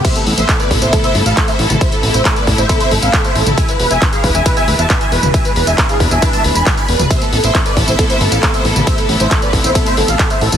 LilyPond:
<<
  \new Staff \with { instrumentName = "Supersaw synth" } { \time 4/4 \key a \minor \tempo 4 = 136 <c'' e''>16 a'16 a'16 <c'' e''>16 a'16 <b' d''>16 a'16 <c'' e''>16 a'16 <c'' e''>16 a'16 <a' f''>16 a'16 <c'' e''>16 a'16 a'16 | <c'' e''>16 a'16 a'16 <c'' e''>16 a'16 <b' d''>16 a'16 <c'' e''>16 a'16 <c'' e''>16 a'16 <a' f''>16 a'16 <c'' e''>16 a'16 a'16 | <e'' gis''>16 b'16 b'16 <e'' gis''>16 b'16 <gis' f''>16 b'16 <e'' gis''>16 b'16 <e'' gis''>16 b'16 <e'' a''>16 b'16 <e'' gis''>16 b'16 b'16 | <e'' gis''>16 b'16 b'16 <e'' gis''>16 b'16 <gis' f''>16 b'16 <e'' gis''>16 b'16 <e'' a''>16 b'16 <gis'' b''>16 b'16 <gis'' b''>16 b'16 b'16 |
<c'' e''>16 a'16 a'16 <c'' e''>16 a'16 <b' d''>16 a'16 <c'' e''>16 a'16 <c'' e''>16 a'16 <a' f''>16 a'16 <c'' e''>16 a'16 a'16 | <c'' e''>16 a'16 a'16 <c'' e''>16 a'16 <b' d''>16 a'16 <c'' e''>16 a'16 <c'' e''>16 a'16 <a' f''>16 a'16 <c'' e''>16 a'16 a'16 | }
  \new Staff \with { instrumentName = "String section" } { \time 4/4 \key a \minor << { e'1~ | e'1~ | e'1 | d'1 |
e'1~ | e'1 | } \\ { <c a b>1~ | <c a b>1 | <b, e gis>1~ | <b, e gis>1 |
<c a b>1~ | <c a b>1 | } >> }
  \new Staff \with { instrumentName = "Analog synth bass" } { \clef bass \time 4/4 \key a \minor r8 a,,16 a,,16 r8 a,,16 a,,16 r8 g,,16 a,,16 r8 a,,16 a,,16 | r8 a,,16 a,,16 r8 a,,16 a,,16 r8 g,,16 a,,16 r8 a,,16 a,,16 | r8 e,,16 e,,16 r8 e,,16 e,,16 r8 d,,16 e,,16 r8 e,,16 e,,16 | r8 e,,16 e,,16 r8 e,,16 e,,16 r8 d,,16 e,,16 r8 e,,16 d,,16 |
r8 a,,16 a,,16 r8 a,,16 a,,16 r8 g,,16 a,,16 r8 a,,16 a,,16 | r8 a,,16 a,,16 r8 a,,16 a,,16 r8 g,,16 a,,16 r8 a,,16 a,,16 | }
  \new DrumStaff \with { instrumentName = "Drums" } \drummode { \time 4/4 <cymc hh bd cymr tamb>16 <hh tamb>16 hho16 <hh tamb>16 <hc hh bd cymr tamb>16 <hh tamb>16 <hho bd>16 <hh tamb>16 <hh bd cymr tamb>16 <hh tamb>16 hho16 <hh tamb>16 <hc hh bd cymr tamb>16 <hh tamb>16 hho16 <hh tamb toml>16 | <hh bd cymr tamb>16 <hh tamb>16 hho16 <hh tamb>16 <hc hh bd cymr tamb>16 <hh tamb>16 <hho bd>16 <hh tamb>16 <hh bd cymr tamb>16 <hh tamb>16 hho16 <hh tamb>16 <hc hh bd cymr tamb>16 <hh tamb>16 hho16 <hh tamb toml>16 | <hh bd cymr tamb>16 <hh tamb>16 hho16 <hh tamb>16 <hc hh bd cymr tamb>16 <hh tamb>16 <hho bd>16 <hh tamb>16 <hh bd cymr tamb>16 <hh tamb>16 hho16 <hh tamb>16 <hc hh bd cymr tamb>16 <hh tamb>16 hho16 <hh tamb toml>16 | <hh bd cymr tamb>16 <hh tamb>16 hho16 <hh tamb>16 <hc hh bd cymr tamb>16 <hh tamb>16 <hho bd>16 <hh tamb>16 <hh bd cymr tamb>16 <hh tamb>16 hho16 <hh tamb>16 <hc hh bd cymr tamb>16 <hh tamb>16 hho16 <hh tamb toml>16 |
<hh bd cymr tamb>16 <hh tamb>16 hho16 <hh tamb>16 <hc hh bd cymr tamb>16 <hh tamb>16 <hho bd>16 <hh tamb>16 <hh bd cymr tamb>16 <hh tamb>16 hho16 <hh tamb>16 <hc hh bd cymr tamb>16 <hh tamb>16 hho16 <hh tamb toml>16 | <hh bd cymr tamb>16 <hh tamb>16 hho16 <hh tamb>16 <hc hh bd cymr tamb>16 <hh tamb>16 <hho bd>16 <hh tamb>16 <hh bd cymr tamb>16 <hh tamb>16 hho16 <hh tamb>16 <hc hh bd cymr tamb>16 <hh tamb>16 hho16 <hh tamb toml>16 | }
>>